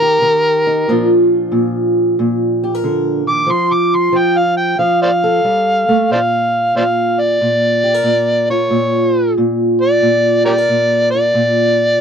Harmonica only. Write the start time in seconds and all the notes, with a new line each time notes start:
Already playing: A#4
3.28 D6
3.51 C6
3.72 D6
3.95 C6
4.17 G5
4.37 F5
4.57 G5
4.79 F5
5.03 C5 D5 F5
6.12 C5 D5 F5
6.77 C5 D5 F5
7.20 D5
8.51 C#5
9.82 D5
10.46 G4 A#4 D5
11.11 D5